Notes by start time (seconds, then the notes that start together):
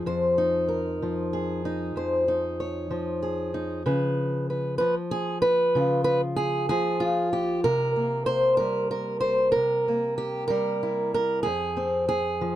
Already playing: F3 G#4
0.06 F2 C5
0.38 D#4
0.68 A#4
1.02 F3
1.33 G#4
1.65 D#4
1.96 F2 C5
2.28 D#4
2.60 C#5
2.91 F3
3.22 G#4
3.54 D#4
3.86 C#3 B4
4.50 B4
4.78 F3 B4
5.11 G#4
5.42 B4
5.75 C#3 F4
6.04 B4
6.36 G#4
6.69 F3 G#4
7.00 F4
7.33 G4
7.64 C3 A#4
7.96 A#3
8.26 C5
8.57 G3 A#4
8.91 A#4
9.20 C5
9.52 C3 A#4
9.88 A#3
10.18 G4
10.48 G3 A#4
10.83 E4
11.14 A#4
11.43 F2 G#4
11.77 C4
12.09 G#4
12.41 F3